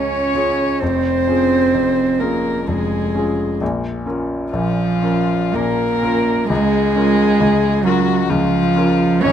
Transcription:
Already playing: grand piano C#2 C#3 C#4 F4 G#4, cello C#4, violin C#5
0.35 grand piano C#4 F4 G#4
0.79 grand piano F1 F2, cello C4, violin C5
1.28 grand piano C#4 F4 G#4
1.74 grand piano F1 F2
2.19 cello A#3, grand piano C#4 F4 G#4, violin A#4
2.67 grand piano F1 F2, cello G#3, violin G#4
3.15 grand piano C#4 F4 G#4
3.61 grand piano A#1 A#2
4.06 grand piano C#4 F4 A#4
4.52 grand piano A#1 A#2, cello F3, violin F4
5.03 grand piano C#4 F4 A#4
5.53 grand piano A#1 A#2, cello A#3, violin A#4
6.02 grand piano C#4 F4 A#4
6.49 grand piano C#2 C#3, cello G#3, violin G#4
6.96 grand piano C#4 F4 A#4
7.40 grand piano C#2 C#3
7.83 cello F#3, grand piano C#4 F4 A#4, violin F#4
8.28 grand piano C#2 C#3, cello F3, violin F4
8.76 grand piano C#4 F4 A#4
9.22 grand piano G#1 G#2, cello C#4, violin C#5

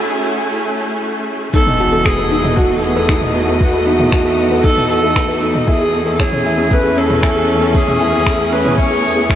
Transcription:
Already playing: string section A3 C#4 G#5, felt piano C#4 E4 G#4 A4 C#5
1.54 cello section E2, string section B3, synth arpeggio sound D#4, felt piano D#4, viola A4, kick, impact, shaker
1.67 felt piano D#5, mid tom, shaker
1.80 felt piano F#4, synth arpeggio sound A5, shaker
1.91 synth arpeggio sound A4, string section D#5, shaker
2.04 viola G#4, felt piano B4, finger snap, kick, shaker
2.13 string section A3
2.18 felt piano A4, synth arpeggio sound B4, shaker
2.32 synth arpeggio sound D#4, felt piano D#4, shaker
2.44 felt piano D#5, mid tom, shaker
2.56 viola F#4, felt piano F#4, synth arpeggio sound A5, kick, shaker
2.70 synth arpeggio sound A4, felt piano A4, shaker
2.76 viola A4
2.82 viola G#4, felt piano B4, shaker
2.96 felt piano A4, synth arpeggio sound B4, shaker
3.09 synth arpeggio sound D#4, felt piano D#4, finger snap, kick, shaker
3.22 felt piano D#5, mid tom, shaker
3.34 felt piano F#4, synth arpeggio sound A5, shaker
3.48 synth arpeggio sound A4, felt piano A4, shaker
3.61 viola F#4, felt piano B4, kick, shaker
3.73 felt piano A4, synth arpeggio sound B4, shaker
3.86 synth arpeggio sound D#4, felt piano D#4, shaker
4.00 felt piano D#5, mid tom, shaker
4.12 viola F#4, felt piano F#4, synth arpeggio sound A5, finger snap, kick, shaker
4.25 synth arpeggio sound A4, felt piano A4, shaker
4.38 felt piano B4, shaker
4.51 felt piano A4, synth arpeggio sound B4, shaker
4.63 felt piano D#4, synth arpeggio sound D#4, viola A4, kick, shaker
4.77 felt piano D#5, mid tom, shaker
4.89 felt piano F#4, viola A4, synth arpeggio sound A5, shaker
5.03 synth arpeggio sound A4, felt piano A4, shaker
5.16 felt piano B4, finger snap, kick, shaker
5.29 felt piano A4, synth arpeggio sound B4, shaker
5.42 synth arpeggio sound D#4, felt piano D#4, shaker
5.55 felt piano D#5, mid tom, shaker
5.67 cello section E2, string section A3, felt piano E4, viola G#4, synth arpeggio sound G#5, kick, shaker
5.80 synth arpeggio sound G#4, felt piano G#4, shaker
5.94 felt piano A4, shaker
5.99 string section C#4
6.07 felt piano G#4, synth arpeggio sound A4, shaker
6.13 viola A4
6.19 synth arpeggio sound C#4, felt piano C#4, viola G#4, finger snap, kick, shaker
6.32 felt piano C#5, mid tom, shaker
6.45 felt piano E4, synth arpeggio sound G#5, string section G#5, shaker
6.58 synth arpeggio sound G#4, felt piano G#4, shaker
6.71 felt piano A4, viola B4, kick, shaker
6.84 felt piano G#4, synth arpeggio sound A4, shaker
6.97 felt piano C#4, synth arpeggio sound C#4, viola A4, shaker
7.10 felt piano C#5, mid tom, shaker
7.22 felt piano E4, synth arpeggio sound G#5, finger snap, kick, shaker
7.36 felt piano G#4, synth arpeggio sound G#4, shaker
7.49 felt piano A4, shaker
7.61 felt piano G#4, synth arpeggio sound A4, shaker
7.74 synth arpeggio sound C#4, felt piano C#4, viola G#4, kick, shaker
7.88 felt piano C#5, mid tom, shaker
8.00 felt piano E4, synth arpeggio sound G#5, shaker
8.13 synth arpeggio sound G#4, felt piano G#4, shaker
8.26 finger snap, kick, shaker
8.39 felt piano G#4, synth arpeggio sound A4, shaker
8.52 synth arpeggio sound C#4, felt piano C#4, viola B4, shaker
8.65 felt piano C#5, mid tom, shaker
8.78 felt piano E4, viola C#5, synth arpeggio sound G#5, kick, shaker
8.90 synth arpeggio sound G#4, felt piano G#4, shaker
9.04 felt piano A4, shaker
9.16 felt piano E4, synth arpeggio sound G#4, shaker
9.30 felt piano A4, synth arpeggio sound E5, finger snap, kick, shaker

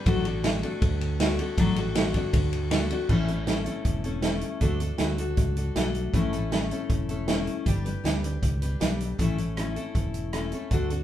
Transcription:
0.06 fingered electric bass A1, steel-string acoustic guitar A2 F#3 A3 D4 F#4 A4, kick, ride
0.25 steel-string acoustic guitar A3 D4 F#4 A4, ride
0.44 steel-string acoustic guitar A3 D4 F#4 A4, snare, ride
0.63 steel-string acoustic guitar A3 D4 F#4 A4, ride
0.82 fingered electric bass D2, kick, ride
1.01 ride
1.20 steel-string acoustic guitar A3 D4 F#4 A4, snare, ride
1.39 steel-string acoustic guitar A3 D4 F#4 A4, ride
1.58 fingered electric bass A1, steel-string acoustic guitar A2 F#3 A3 D4 F#4 A4, kick, ride
1.76 steel-string acoustic guitar A3 D4 F#4 A4, ride
1.95 steel-string acoustic guitar A3 D4 F#4 A4, snare, ride
2.14 steel-string acoustic guitar A3 D4 F#4 A4, kick, ride
2.33 fingered electric bass D2, kick, ride
2.53 ride
2.71 steel-string acoustic guitar A3 D4 F#4 A4, snare, ride
2.90 steel-string acoustic guitar A3 D4 F#4 A4, ride
3.09 fingered electric bass A1, steel-string acoustic guitar A2 E3 A3 C#4 E4 A4, kick, crash
3.28 steel-string acoustic guitar A3 C#4 E4 A4, closed hi-hat
3.47 steel-string acoustic guitar A3 C#4 E4 A4, snare, closed hi-hat
3.65 steel-string acoustic guitar A3 C#4 E4 A4, closed hi-hat
3.85 fingered electric bass E1, kick, closed hi-hat
4.04 steel-string acoustic guitar A3 C#4 E4 A4, closed hi-hat
4.22 steel-string acoustic guitar A3 C#4 E4 A4, snare, closed hi-hat
4.41 closed hi-hat
4.61 fingered electric bass D2, steel-string acoustic guitar D3 A3 D4 F#4 A4, kick, closed hi-hat
4.80 steel-string acoustic guitar D4 F#4 A4, closed hi-hat
4.98 fingered electric bass D2, steel-string acoustic guitar A3 D4 F#4 A4, snare, closed hi-hat
5.18 steel-string acoustic guitar D4 F#4 A4, closed hi-hat
5.37 fingered electric bass C#2, kick, closed hi-hat
5.56 steel-string acoustic guitar D4 F#4 A4, closed hi-hat
5.76 fingered electric bass B1, steel-string acoustic guitar A3 D4 F#4 A4, snare, closed hi-hat
5.95 closed hi-hat
6.13 fingered electric bass A1, steel-string acoustic guitar A2 E3 A3 C#4 E4 A4, kick, closed hi-hat
6.33 steel-string acoustic guitar A3 C#4 E4 A4, closed hi-hat
6.52 steel-string acoustic guitar A3 C#4 E4 A4, snare, closed hi-hat
6.71 steel-string acoustic guitar A3 C#4 E4 A4, closed hi-hat
6.89 fingered electric bass E1, kick, closed hi-hat
7.09 steel-string acoustic guitar A3 C#4 E4 A4, closed hi-hat
7.28 steel-string acoustic guitar A3 C#4 E4 A4, snare, closed hi-hat
7.47 closed hi-hat
7.66 fingered electric bass G1, steel-string acoustic guitar G3 D4 G4 B4, kick, closed hi-hat
7.85 steel-string acoustic guitar D4 G4 B4, closed hi-hat
8.04 fingered electric bass D2, steel-string acoustic guitar G3 D4 G4 B4, snare, closed hi-hat
8.24 steel-string acoustic guitar D4 G4 B4, closed hi-hat
8.43 fingered electric bass C#2, kick, closed hi-hat
8.62 steel-string acoustic guitar D4 G4 B4, closed hi-hat
8.80 fingered electric bass B1, steel-string acoustic guitar G3 D4 G4 B4, snare, closed hi-hat
9.01 closed hi-hat
9.18 fingered electric bass A1, steel-string acoustic guitar A2 E3 A3 C#4 E4 A4, kick, closed hi-hat
9.38 steel-string acoustic guitar A3 C#4 E4 A4, closed hi-hat
9.57 steel-string acoustic guitar A3 C#4 E4 A4, cross-stick, closed hi-hat
9.76 steel-string acoustic guitar A3 C#4 E4 A4, closed hi-hat
9.95 fingered electric bass E1, kick, closed hi-hat
10.14 closed hi-hat
10.33 steel-string acoustic guitar A3 C#4 E4 A4, cross-stick, closed hi-hat
10.52 steel-string acoustic guitar A3 C#4 E4 A4, closed hi-hat
10.71 fingered electric bass D2, steel-string acoustic guitar D3 A3 D4 F#4 A4, kick, closed hi-hat
10.90 steel-string acoustic guitar D4 F#4 A4, closed hi-hat

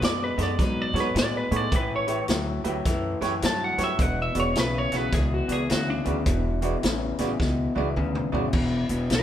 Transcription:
0.01 upright bass F#2, clean electric guitar B2 G#3, lead electric guitar D5, snare, closed hi-hat
0.24 lead electric guitar B4
0.37 upright bass F#2, clean electric guitar B2 G#3, upright piano D#4 F#4 A4 D#5, snare, closed hi-hat
0.43 lead electric guitar D5
0.59 upright bass G#2, clean electric guitar B2 F#3, lead electric guitar B4, kick, snare, closed hi-hat
0.82 lead electric guitar D5
0.93 upright bass G#2, clean electric guitar B2 F#3, upright piano D#4 F#4 A4 C#5, snare, closed hi-hat
1.00 lead electric guitar B4
1.15 upright bass A2, clean electric guitar B2 G#3, snare, closed hi-hat
1.19 lead electric guitar D5
1.37 lead electric guitar B4
1.51 upright bass A2, clean electric guitar B2 G#3, upright piano D#4 F#4 A4 C#5, closed hi-hat
1.56 lead electric guitar D5
1.71 upright bass A1, clean electric guitar A2 E3, kick, closed hi-hat
1.76 lead electric guitar B4
1.96 lead electric guitar C#5
2.07 clean electric guitar A2 E3, upright piano E4 G4 B4 C#5, closed hi-hat
2.28 upright bass D2, clean electric guitar A2 F#3, snare, closed hi-hat
2.64 upright bass D2, clean electric guitar A2 F#3, upright piano E4 G4 B4 E5, closed hi-hat
2.85 upright bass F#2, clean electric guitar A2 E3, kick, snare, closed hi-hat
3.21 upright bass F#2, clean electric guitar A2 E3, upright piano E4 G4 B4 C#5, snare, closed hi-hat
3.42 upright bass G2, clean electric guitar A2 F#3, lead electric guitar A5, snare, closed hi-hat
3.64 lead electric guitar F#5
3.78 upright bass G2, clean electric guitar A2 F#3, upright piano E4 G4 B4 C#5, snare, closed hi-hat
3.84 lead electric guitar E5
3.99 upright bass E1, clean electric guitar E2 B2, lead electric guitar F#5, kick, closed hi-hat
4.22 lead electric guitar E5
4.34 upright bass E1, clean electric guitar E2 B2, upright piano F#4 G#4 B4 D5, closed hi-hat
4.40 lead electric guitar C#5
4.55 upright bass B1, clean electric guitar E2 C#3, snare, closed hi-hat
4.59 lead electric guitar B4
4.78 lead electric guitar C#5
4.92 upright bass B1, clean electric guitar E2 C#3, upright piano F#4 G#4 B4 E5, snare, closed hi-hat
4.97 lead electric guitar B4
5.12 upright bass C#2, clean electric guitar E2 B2, lead electric guitar G#4, kick, snare, closed hi-hat
5.34 lead electric guitar F#4
5.48 upright bass C#2, clean electric guitar E2 B2, upright piano F#4 G#4 B4 D5, closed hi-hat
5.52 lead electric guitar G#4
5.70 upright bass D2, clean electric guitar E2 C#3, lead electric guitar F#4, snare, closed hi-hat
5.90 lead electric guitar D4
6.04 upright bass D2, clean electric guitar E2 C#3, upright piano F#4 G#4 B4 D5, closed hi-hat
6.26 upright bass E1, clean electric guitar E2 B2, kick, closed hi-hat
6.62 clean electric guitar E2 B2, upright piano F#4 G#4 B4 D5, closed hi-hat
6.83 upright bass A1, clean electric guitar E2 C#3, snare, closed hi-hat
7.18 upright bass A1, clean electric guitar E2 C#3, upright piano F#4 G#4 B4 D5, snare, closed hi-hat
7.40 upright bass C#2, clean electric guitar E2 B2, kick, snare
7.75 upright bass C#2, clean electric guitar E2 B2, upright piano F#4 G#4 B4 D5, high tom
7.96 upright bass D2, clean electric guitar E2 C#3, mid tom
8.15 mid tom
8.32 upright bass D2, clean electric guitar E2 C#3, upright piano F#4 G#4 B4 D5, floor tom
8.53 upright bass E1, clean electric guitar E2 B2, kick, crash
8.89 upright bass E1, clean electric guitar E2 B2, closed hi-hat
9.10 upright bass B1, clean electric guitar E2 C#3, snare, closed hi-hat
9.15 lead electric guitar B4

